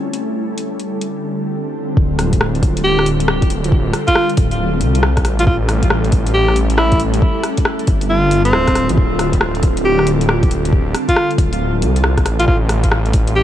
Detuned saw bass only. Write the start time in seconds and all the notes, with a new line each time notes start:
1.97 D1
2.63 D1
4.38 D1
4.81 C2
5.25 A1
5.47 A1
6.13 A1
7.88 G1
8.53 D1
8.90 A1
8.97 D1
9.63 D1
11.38 D1
11.81 C2
12.26 A1
12.48 A1
13.14 A1